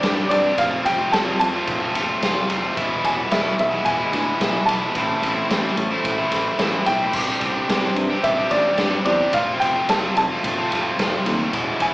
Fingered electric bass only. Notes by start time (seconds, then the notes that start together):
0.04 G2
0.31 G2
0.58 F1
0.85 F1
1.13 F1
1.41 F1
1.68 F1
1.95 F1
2.22 F1
2.50 F1
2.77 E1
3.04 E1
3.32 E1
3.59 B1
3.86 E1
4.13 D2
4.40 B1
4.67 B1
4.95 A1
5.22 A1
5.50 A1
5.76 A1
6.04 A1
6.31 A1
6.59 A1
6.87 B1
7.14 C2
7.41 C2
7.69 C2
7.95 G2
8.24 C2
8.51 A1
8.79 G2
9.06 E2
9.33 F1
9.61 F1
9.90 F1
10.17 F1
10.44 F1
10.71 F1
10.99 F1
11.26 D#2
11.53 E1
11.80 E1